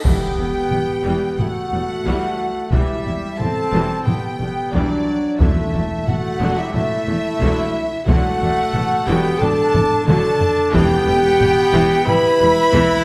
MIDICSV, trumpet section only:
0, 0, Header, 1, 2, 480
1, 0, Start_track
1, 0, Key_signature, 1, "minor"
1, 0, Tempo, 667408
1, 38, Time_signature, 4, 2, 24, 8
1, 9380, End_track
2, 0, Start_track
2, 0, Title_t, "Trumpet section"
2, 0, Program_c, 0, 61
2, 34, Note_on_c, 0, 59, 77
2, 998, Note_off_c, 0, 59, 0
2, 1003, Note_on_c, 0, 57, 72
2, 1945, Note_off_c, 0, 57, 0
2, 1957, Note_on_c, 0, 55, 74
2, 2434, Note_on_c, 0, 60, 87
2, 2441, Note_off_c, 0, 55, 0
2, 2920, Note_off_c, 0, 60, 0
2, 2920, Note_on_c, 0, 59, 68
2, 3401, Note_on_c, 0, 54, 78
2, 3403, Note_off_c, 0, 59, 0
2, 3884, Note_off_c, 0, 54, 0
2, 3886, Note_on_c, 0, 57, 70
2, 4357, Note_off_c, 0, 57, 0
2, 4368, Note_on_c, 0, 57, 78
2, 4721, Note_off_c, 0, 57, 0
2, 4725, Note_on_c, 0, 55, 76
2, 4840, Note_on_c, 0, 57, 90
2, 4846, Note_off_c, 0, 55, 0
2, 5685, Note_off_c, 0, 57, 0
2, 5808, Note_on_c, 0, 57, 103
2, 6513, Note_off_c, 0, 57, 0
2, 6524, Note_on_c, 0, 59, 92
2, 6763, Note_on_c, 0, 62, 101
2, 6766, Note_off_c, 0, 59, 0
2, 7234, Note_off_c, 0, 62, 0
2, 7243, Note_on_c, 0, 62, 96
2, 7715, Note_off_c, 0, 62, 0
2, 7728, Note_on_c, 0, 59, 116
2, 8681, Note_on_c, 0, 64, 119
2, 8685, Note_off_c, 0, 59, 0
2, 9380, Note_off_c, 0, 64, 0
2, 9380, End_track
0, 0, End_of_file